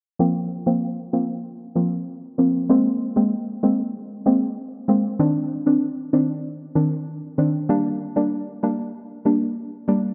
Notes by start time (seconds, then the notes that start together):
0.19 F3 A#3 C4
0.66 F3 A#3 C4
1.13 F3 A#3 C4
1.75 F3 A#3 C4
2.38 F3 A#3 C4
2.69 G#3 A#3 C4
3.16 G#3 A#3 C4
3.63 G#3 A#3 C4
4.26 G#3 A#3 C4
4.88 G#3 A#3 C4
5.19 D#3 C4 D4
5.66 D#3 C4 D4
6.13 D#3 C4 D4
6.75 D#3 C4 D4
7.38 D#3 C4 D4
7.69 G3 A#3 D4
8.16 G3 A#3 D4
8.63 G3 A#3 D4
9.25 G3 A#3 D4
9.88 G3 A#3 D4